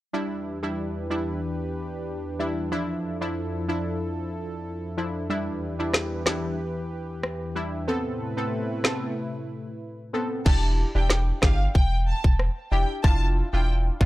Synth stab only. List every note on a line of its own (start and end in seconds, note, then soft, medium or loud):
0.13 0.59 G3 medium
0.13 0.59 D4 medium
0.13 0.59 E4 loud
0.63 1.07 G3 medium
0.63 1.07 D4 medium
0.63 1.07 E4 medium
1.10 1.40 G3 medium
1.10 1.40 D4 medium
1.10 1.40 E4 medium
2.39 2.69 G3 medium
2.39 2.69 D4 medium
2.39 2.69 E4 medium
2.71 3.17 F3 medium
2.71 3.17 D4 medium
2.71 3.17 E4 loud
3.21 3.65 F3 medium
3.21 3.65 D4 medium
3.21 3.65 E4 medium
3.68 3.98 F3 medium
3.68 3.98 D4 medium
3.68 3.98 E4 medium
4.97 5.27 F3 medium
4.97 5.27 D4 medium
4.97 5.28 E4 medium
5.29 5.75 G3 medium
5.29 5.75 D4 medium
5.29 5.75 E4 loud
5.79 6.23 G3 medium
5.79 6.23 D4 medium
5.79 6.23 E4 medium
6.26 6.56 G3 medium
6.26 6.56 D4 medium
6.26 6.57 E4 medium
7.55 7.85 G3 medium
7.55 7.85 D4 medium
7.55 7.86 E4 medium
7.88 8.33 B3 medium
7.88 8.33 C4 medium
7.88 8.33 A4 loud
8.37 8.81 B3 medium
8.37 8.81 C4 medium
8.37 8.81 A4 medium
8.84 9.14 B3 medium
8.84 9.14 C4 medium
8.84 9.15 A4 medium
10.13 10.43 B3 medium
10.13 10.43 C4 medium
10.13 10.44 A4 medium
10.45 10.91 D4 medium
10.45 10.91 E4 medium
10.45 10.91 G4 loud
10.95 11.39 D4 medium
10.95 11.39 E4 medium
10.95 11.39 G4 medium
11.42 11.72 D4 medium
11.42 11.73 E4 medium
11.42 11.73 G4 medium
12.72 13.01 D4 medium
12.72 13.02 E4 medium
12.72 13.02 G4 medium
13.04 13.49 D4 medium
13.04 13.49 E4 medium
13.04 13.49 F4 loud
13.53 13.97 D4 medium
13.53 13.97 E4 medium
13.53 13.97 F4 medium
14.00 14.05 D4 medium
14.00 14.05 E4 medium
14.00 14.05 F4 medium